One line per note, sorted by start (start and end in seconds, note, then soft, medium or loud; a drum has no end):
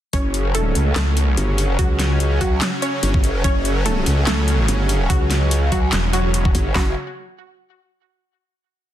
0.13 0.74 F#1 loud
0.13 6.71 C#3 medium
0.13 6.71 F#3 medium
0.13 0.48 C#4 medium
0.13 6.71 C#4 medium
0.13 0.48 C#5 loud
0.13 kick loud
0.13 closed hi-hat medium
0.34 closed hi-hat medium
0.55 0.90 A3 medium
0.55 0.90 A4 medium
0.55 closed hi-hat medium
0.75 0.95 C#2 medium
0.75 closed hi-hat medium
0.96 1.36 C#2 loud
0.96 1.71 A3 medium
0.96 1.71 A4 medium
0.96 snare loud
0.96 clap medium
0.96 closed hi-hat medium
1.17 closed hi-hat medium
1.37 1.77 G1 loud
1.37 closed hi-hat medium
1.58 closed hi-hat medium
1.79 2.60 C#2 loud
1.79 2.33 F#3 medium
1.79 2.33 F#4 medium
1.79 kick loud
1.79 closed hi-hat medium
1.99 snare medium
1.99 closed hi-hat medium
2.20 closed hi-hat medium
2.41 2.76 F#3 medium
2.41 2.76 F#4 medium
2.41 kick medium
2.41 closed hi-hat medium
2.62 snare loud
2.62 clap medium
2.62 closed hi-hat medium
2.82 3.37 C#4 medium
2.82 3.37 C#5 loud
2.82 closed hi-hat medium
3.03 3.43 G1 loud
3.03 closed hi-hat medium
3.14 kick loud
3.24 closed hi-hat medium
3.44 4.05 F#1 loud
3.44 3.79 C#4 medium
3.44 3.79 C#5 loud
3.44 kick loud
3.44 closed hi-hat medium
3.65 closed hi-hat medium
3.86 4.21 A3 medium
3.86 4.21 A4 medium
3.86 closed hi-hat medium
4.06 4.26 C#2 loud
4.06 closed hi-hat medium
4.27 4.67 C#2 loud
4.27 5.02 A3 medium
4.27 5.02 A4 medium
4.27 snare loud
4.27 clap medium
4.27 closed hi-hat medium
4.48 closed hi-hat medium
4.68 5.08 G1 loud
4.68 closed hi-hat medium
4.89 closed hi-hat medium
5.10 5.91 C#2 loud
5.10 5.64 F#3 medium
5.10 5.64 F#4 medium
5.10 kick loud
5.10 closed hi-hat medium
5.31 snare medium
5.31 closed hi-hat medium
5.51 closed hi-hat medium
5.72 6.07 F#3 medium
5.72 6.07 F#4 medium
5.72 kick medium
5.72 closed hi-hat medium
5.93 6.53 E1 loud
5.93 snare loud
5.93 clap medium
5.93 closed hi-hat medium
6.13 6.68 F#3 medium
6.13 6.68 F#4 loud
6.13 closed hi-hat soft
6.34 closed hi-hat medium
6.45 kick loud
6.55 6.74 G1 loud
6.55 kick medium
6.55 closed hi-hat medium
6.75 6.95 F#1 loud
6.75 6.95 C#3 medium
6.75 6.95 F#3 medium
6.75 6.95 C#4 medium
6.75 6.91 F#4 medium
6.75 kick loud
6.75 snare loud
6.75 clap medium